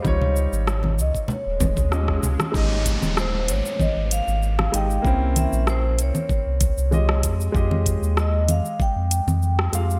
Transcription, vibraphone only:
X:1
M:4/4
L:1/8
Q:1/4=96
K:Ab
V:1 name="Vibraphone"
d3 e d2 z2 | z2 c d e f2 g- | g =e c d4 z | z2 e f g3 z |]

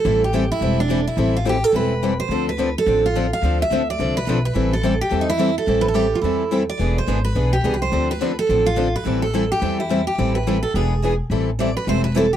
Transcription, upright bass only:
X:1
M:4/4
L:1/8
Q:"Swing" 1/4=213
K:Am
V:1 name="Upright bass" clef=bass
A,,,4 E,,,4 | A,,,4 E,,,4 | D,,4 A,,,4 | D,,2 D,,2 C,,2 B,,,2 |
A,,,4 E,,4 | A,,,4 E,,4 | E,,,2 ^G,,,2 B,,,2 C,,2 | D,,4 A,,,4 |
A,,,4 E,,4 | A,,,4 E,,,4 | A,,,4 E,,,4 |]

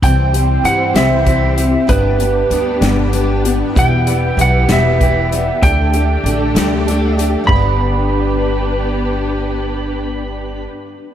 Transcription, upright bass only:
X:1
M:6/8
L:1/8
Q:3/8=64
K:G
V:1 name="Upright bass" clef=bass
C,,2 G,, C,,3 | G,,,2 D,, G,,,3 | E,,,2 B,,, E,,,3 | D,,2 A,,, D,,3 |
G,,,6- | G,,,6 |]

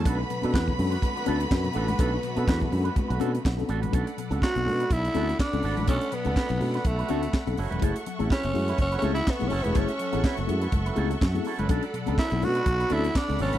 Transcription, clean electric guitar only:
X:1
M:4/4
L:1/16
Q:"Swing 16ths" 1/4=124
K:Bdor
V:1 name="Clean electric guitar"
[A,DFA]2 z [A,DFA] [A,DFB]2 z [A,DFB] z [A,DFB] [A,DFA]2 z2 [A,DFA] [A,DFB] | [A,DFA]2 z [A,DFA] [A,DFB]2 z [A,DFB] z [A,DFB] [A,DFA]2 z2 [A,DFA] [A,DFB] | [A,DFA]2 z [A,DFA] [A,DFB]2 z [A,DFB] z2 [A,DFA]2 z2 [A,DFA] [A,DFB] | [A,DFA]2 z [A,DFA] [A,DFB]2 z [A,DFB] z [A,DFB] [A,DFA]2 z2 [F,CEA] [F,CEB] |
[F,CEA]2 z [F,CEA] [F,CEB]2 z [F,CEB] z [F,CEB] [F,CEA]2 z2 [F,CEA] [F,CEB] | [F,CEA]2 z [F,CEA] [F,CEB]2 z [F,CEB] z [F,CEB] [F,CEA]2 z2 [F,CEA] [F,CEB] | [F,B,DA]2 z [F,B,DA] [F,B,DB]2 z [F,B,DB] z [F,B,DB] [F,B,DA]2 z2 [F,B,DA] [B,DB] |]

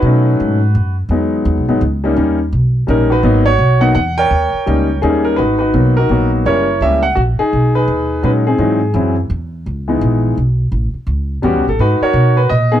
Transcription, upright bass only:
X:1
M:3/4
L:1/8
Q:"Swing" 1/4=168
K:G#m
V:1 name="Upright bass" clef=bass
B,,2 G,,2 F,,2 | E,,2 (3D,, B,,, G,,, C,,2 | D,,2 B,,,2 A,,,2 | G,,,2 B,,,2 E,,2 |
D,, z C,,2 D,,2 | G,,,2 B,,,2 A,,,2 | F,,,2 C,,2 A,,, z | B,,,2 D,,2 A,,2 |
G,,2 F,,2 E,,2 | C,,2 A,,,2 B,,,2 | =A,,, z C,,2 (3E,, C,, A,,, | G,, z B,,2 A,,2 |]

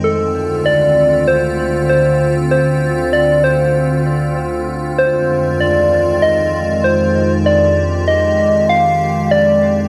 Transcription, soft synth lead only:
X:1
M:4/4
L:1/16
Q:"Swing 16ths" 1/4=97
K:Fdor
V:1 name="Soft synth lead"
=A4 d4 c4 c3 z | c4 d2 c6 z4 | c4 d4 e4 c3 z | d4 e4 f4 d3 z |]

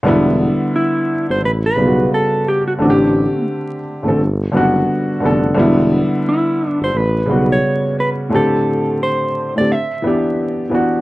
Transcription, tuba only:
X:1
M:4/4
L:1/16
Q:"Swing 16ths" 1/4=87
K:Em
V:1 name="Tuba" clef=bass
E,,,3 z4 G,,, A,,,2 B,,,2 z4 | A,,,3 z4 A,,, G,,,2 F,,,2 z2 =F,,,2 | E,,,3 z4 G,,, A,,,2 B,,,2 z4 | z16 |]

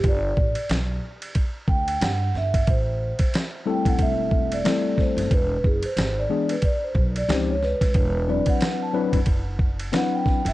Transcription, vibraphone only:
X:1
M:4/4
L:1/16
Q:"Swing 16ths" 1/4=91
K:Ador
V:1 name="Vibraphone"
d4 z6 g2 f2 e2 | c4 z2 g f e3 d3 c2 | B2 ^G c2 d2 B d c2 d ^B ^c =B2- | B2 d f2 a2 z4 z f g2 e |]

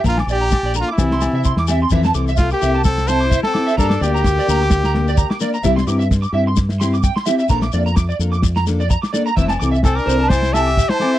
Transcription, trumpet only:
X:1
M:4/4
L:1/16
Q:"Swing 16ths" 1/4=129
K:F
V:1 name="Trumpet"
F2 G4 F E6- E z2 | z4 F G3 A2 c3 A3 | A2 G12 z2 | z16 |
z16 | z4 A B3 c2 e3 c3 |]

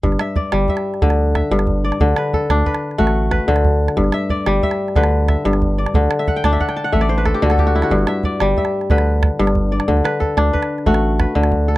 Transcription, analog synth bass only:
X:1
M:12/8
L:1/8
Q:3/8=122
K:G
V:1 name="Analog synth bass" clef=bass
G,,, z2 G,,, z2 D,,3 G,,,3 | D,, z2 D,, z2 A,,,3 D,,3 | G,,, z2 G,,, z2 D,,3 G,,,3 | D,, z2 D,, z2 A,,,3 D,,3 |
G,,, z2 G,,, z2 D,,3 G,,,3 | D,, z2 D,, z2 A,,,3 D,,3 |]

